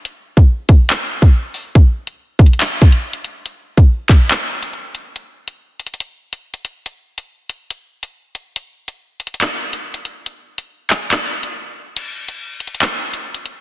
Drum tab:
CC |------------------------------------------------|------------------------------------------------|------------------------------------------------|------------------------------------------------|
HH |x--------x--------x-----x--------x--------o-----|x--------x--------x-x-x-x--------x-----x--x-----|x--------x--------x-----x--------x--x-----x-----|x--------x--------x-x-x-x--------x-----x--x-----|
CP |------------------------x-----------------------|------------------------x-----------------------|------------------x-----x-----------------------|------------------------------------------------|
BD |---------o--------o--------------o--------------|o-----------------o-----------o-----------------|---------o--------o-----------------------------|------------------------------------------------|

CC |------------------------------------------------|------------------------------------------------|------------------------------------------------|x-----------------------------------------------|
HH |x--------x--------x-----x--------x--------x-----|x--------x--------x-x-x-x--------x-----x--x-----|x--------x--------x-----x--------x--------------|x--------x--------x-x-x-x--------x-----x--x-----|
CP |------------------------------------------------|------------------------x-----------------------|------------------x-----x-----------------------|------------------------x-----------------------|
BD |------------------------------------------------|------------------------------------------------|------------------------------------------------|------------------------------------------------|